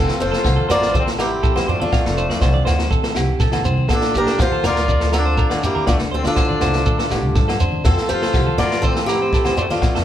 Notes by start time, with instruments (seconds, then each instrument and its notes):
Already playing: clean electric guitar F2 A4, steel-string acoustic guitar F4 A4
0.01 trumpet C4
0.08 snare
0.20 upright bass F1, steel-string acoustic guitar A4 C5, shekere
0.26 trumpet F4
0.32 clean electric guitar A4, snare
0.44 upright bass C2, clean electric guitar F3 A4, muted clean electric guitar stroke, kick, snare, low agogo, shekere
0.56 clean electric guitar A4, high conga
0.69 upright bass A1, steel-string acoustic guitar A#4 D5, clean electric guitar C5, muted clean electric guitar stroke, snare, low conga, low agogo, shekere
0.73 trumpet F4
0.82 snare
0.94 clean electric guitar C3 C5, steel-string acoustic guitar F4 A4, kick, high conga, shekere
0.99 trumpet C4
1.06 clean electric guitar A4, snare
1.19 steel-string acoustic guitar E4 G4, clean electric guitar A#4, snare, low agogo, shekere
1.23 trumpet C4
1.43 clean electric guitar F3 A4, kick, shekere
1.55 clean electric guitar C5, snare, high conga, low agogo
1.68 trumpet A3, clean electric guitar C4 C5, steel-string acoustic guitar D4 F4, low conga
1.80 trumpet A3, steel-string acoustic guitar D4 F4, clean electric guitar A4, high conga
1.92 clean electric guitar F2 F5, kick, snare, low agogo, shekere
2.05 upright bass F1, clean electric guitar A4, snare
2.17 clean electric guitar C5, shekere
2.30 upright bass F2, clean electric guitar D5, snare
2.41 upright bass C2, clean electric guitar F3 C4 C5, kick, snare, low agogo, shekere
2.54 clean electric guitar D5, high conga
2.65 upright bass D2, clean electric guitar A3 C5, snare, low conga, low agogo, shekere
2.79 snare
2.90 clean electric guitar C3 A4, kick, high conga, shekere
3.03 clean electric guitar A4, snare
3.15 upright bass C2, clean electric guitar G4, snare, low agogo, shekere
3.28 upright bass F1
3.39 clean electric guitar F3 A4, kick, snare, shekere
3.52 clean electric guitar A4, snare, high conga, low agogo
3.64 upright bass C2, clean electric guitar C4 C5, low conga, shekere
3.78 high conga
3.88 upright bass A#1, clean electric guitar A#2 A4, steel-string acoustic guitar F4, kick, snare, low agogo, shekere
3.93 trumpet D4, steel-string acoustic guitar A4
4.01 snare
4.14 upright bass A#1, clean electric guitar G4, steel-string acoustic guitar G4 A#4, shekere
4.19 trumpet D4
4.26 clean electric guitar A4, snare
4.38 upright bass F2, clean electric guitar F3 F4 G4, steel-string acoustic guitar F4 C5, kick, snare, low agogo, shekere
4.43 trumpet F4
4.52 clean electric guitar A4, high conga
4.63 upright bass D2, clean electric guitar A#4, steel-string acoustic guitar A#4 D5, muted clean electric guitar stroke, snare, low conga, low agogo, shekere
4.67 trumpet F4
4.76 snare
4.88 clean electric guitar F2 D5, kick, high conga, shekere
5.00 clean electric guitar A4, snare
5.12 steel-string acoustic guitar F4 A4, clean electric guitar A#4, snare, low agogo, shekere
5.18 trumpet D4
5.25 clean electric guitar C5
5.38 clean electric guitar F3 A#4, kick, shekere
5.50 clean electric guitar D5, snare, high conga, low agogo
5.62 trumpet A#3, clean electric guitar D4, steel-string acoustic guitar E4 G4, muted clean electric guitar stroke, low conga, shekere
5.75 clean electric guitar A#4, high conga
5.87 upright bass D2, clean electric guitar D3 D5, steel-string acoustic guitar D4 F4, kick, snare, low agogo, shekere
5.91 trumpet A3
5.99 upright bass D2, clean electric guitar A4, snare
6.11 steel-string acoustic guitar F4 A4, clean electric guitar C5
6.16 trumpet C4
6.24 upright bass D3, trumpet D4, steel-string acoustic guitar F4 A4, clean electric guitar D5, snare
6.36 upright bass A1, clean electric guitar F3 F4 C5, kick, snare, low agogo, shekere
6.49 clean electric guitar D5, high conga
6.61 upright bass C2, clean electric guitar A3 C5, snare, low conga, low agogo, shekere
6.73 snare
6.86 clean electric guitar A2 A4, kick, high conga, shekere
6.99 clean electric guitar A4, snare
7.11 upright bass A1, clean electric guitar G4, snare, low agogo, shekere
7.25 upright bass D2
7.35 upright bass G2, clean electric guitar F3 A4, kick, snare, shekere
7.48 clean electric guitar A4, snare, low agogo
7.60 upright bass F2, clean electric guitar D4 C5, low conga, shekere
7.72 high conga
7.84 upright bass F2, clean electric guitar F2 A4, trumpet C4, steel-string acoustic guitar F4 A4, kick, snare, low agogo, shekere
7.97 snare
8.09 upright bass F2, trumpet F4, clean electric guitar G4, steel-string acoustic guitar A4 C5, shekere
8.22 clean electric guitar A4, snare
8.33 upright bass C2, clean electric guitar F3 G4 A4, kick, snare, low agogo, shekere
8.46 clean electric guitar A4, high conga
8.58 upright bass A2, clean electric guitar A3 A4, trumpet F4, steel-string acoustic guitar A#4 D5, snare, low conga, low agogo
8.71 snare
8.82 clean electric guitar C3 C5, steel-string acoustic guitar F4 A4, kick, high conga, shekere
8.87 trumpet C4
8.96 clean electric guitar A4, snare
9.06 steel-string acoustic guitar E4 G4, clean electric guitar A#4, snare, low agogo, shekere
9.12 trumpet C4
9.22 clean electric guitar C5
9.33 clean electric guitar F3 A4, kick, snare, shekere
9.45 clean electric guitar C5, snare, high conga, low agogo
9.57 clean electric guitar C4 C5, steel-string acoustic guitar D4 F4, low conga, shekere
9.61 trumpet A3
9.70 trumpet A3, steel-string acoustic guitar D4 F4, clean electric guitar A4, snare, high conga
9.81 clean electric guitar F2, muted clean electric guitar stroke, kick, snare, low agogo, shekere
9.95 upright bass F2, clean electric guitar A4, snare